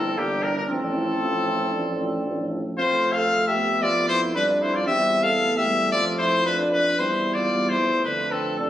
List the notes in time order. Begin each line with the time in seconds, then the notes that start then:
Already playing: G1 C4 E4 A4
0.17 G1 E3 A#3 D4 G4
0.43 E3 D4 A#4
0.56 D4 A#4
0.69 A1 F3 C4 A4
0.95 F3 E4
1.21 A1 F3 F4
1.47 F3 E4
1.73 A1 F3 D4
2.00 F3
2.26 A1 F3
2.52 F3
2.78 F2 A3 C4 F4 C5
3.13 A4 F5
3.30 A3
3.47 G4 E5
3.56 B3
3.82 F2 F3 F4 D5
4.09 E4 C5
4.35 G3 D4 B4
4.62 E4 C5
4.74 F4 D5
4.87 E2 G3 C4 G4 E5
5.22 A4 F5
5.40 A3 B3
5.57 G4 E5
5.66 G3 A3
5.92 F2 F3 F4 D5
6.19 E4 C5
6.45 D4 B4
6.72 D4 B4
6.99 E2 G3 C4 E4 C5
7.34 F4 D5
7.51 G3 B3
7.69 E4 C5
7.78 E3 A3
8.05 F2 D3 D4 B4
8.31 C4 A4
8.59 C3 D4 A4